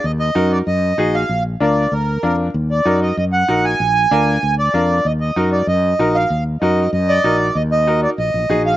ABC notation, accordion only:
X:1
M:4/4
L:1/8
Q:1/4=192
K:Ebm
V:1 name="Accordion"
e e2 =d e3 f- | f z =d2 B3 z | z =d2 e e g2 a- | a4- a =d3 |
e e2 =d e3 f- | f z e2 e =d3 | e e2 =d e3 f |]